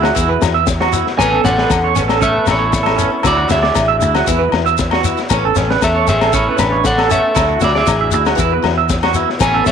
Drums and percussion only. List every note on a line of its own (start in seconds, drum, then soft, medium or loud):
0.04 snare medium
0.04 low agogo medium
0.04 shekere soft
0.16 kick loud
0.16 shekere medium
0.42 snare medium
0.42 low agogo medium
0.42 shekere medium
0.67 kick medium
0.67 snare medium
0.67 shekere medium
0.81 snare medium
0.81 low agogo medium
0.93 shekere loud
1.07 snare soft
1.19 kick medium
1.19 snare medium
1.19 low agogo medium
1.19 shekere medium
1.45 snare medium
1.45 shekere medium
1.58 snare medium
1.70 kick medium
1.70 snare medium
1.70 low agogo medium
1.70 shekere medium
1.96 snare soft
1.96 shekere medium
2.09 snare medium
2.09 low agogo medium
2.09 shekere soft
2.22 kick loud
2.22 shekere medium
2.47 snare medium
2.47 low agogo medium
2.47 shekere medium
2.73 kick loud
2.73 snare medium
2.73 shekere medium
2.86 snare medium
2.86 low agogo medium
2.99 shekere medium
3.23 kick medium
3.23 snare medium
3.23 low agogo medium
3.23 shekere medium
3.49 snare medium
3.49 shekere medium
3.64 snare medium
3.75 kick medium
3.75 snare medium
3.75 low agogo medium
3.75 shekere medium
4.01 shekere medium
4.15 snare medium
4.15 low agogo medium
4.15 shekere soft
4.27 kick medium
4.27 shekere medium
4.52 snare medium
4.52 low agogo medium
4.66 shekere soft
4.78 kick loud
4.78 snare medium
4.78 shekere medium
4.91 snare medium
4.91 low agogo medium
5.04 shekere loud
5.17 snare soft
5.17 shekere soft
5.30 kick medium
5.30 snare medium
5.30 low agogo medium
5.30 shekere medium
5.56 snare medium
5.56 shekere medium
5.71 snare medium
5.82 kick medium
5.82 snare medium
5.82 low agogo medium
5.82 shekere medium
6.07 snare soft
6.07 shekere medium
6.21 snare medium
6.21 low agogo medium
6.21 shekere soft
6.33 kick loud
6.33 shekere medium
6.58 snare medium
6.58 low agogo medium
6.58 shekere loud
6.84 kick medium
6.84 snare medium
6.84 shekere medium
6.98 snare medium
6.98 low agogo medium
7.11 shekere loud
7.36 kick medium
7.36 snare medium
7.36 low agogo medium
7.36 shekere medium
7.61 snare medium
7.61 shekere loud
7.75 snare medium
7.87 kick medium
7.87 snare medium
7.87 low agogo medium
7.87 shekere medium
8.12 shekere medium
8.26 snare medium
8.26 low agogo medium
8.26 shekere soft
8.38 kick loud
8.38 shekere medium
8.64 snare medium
8.64 low agogo medium
8.89 kick medium
8.89 snare medium
8.89 shekere medium
9.03 snare medium
9.03 low agogo medium
9.14 shekere medium
9.30 snare soft
9.40 kick medium
9.40 snare medium
9.40 low agogo medium
9.40 shekere medium
9.66 snare medium
9.66 shekere medium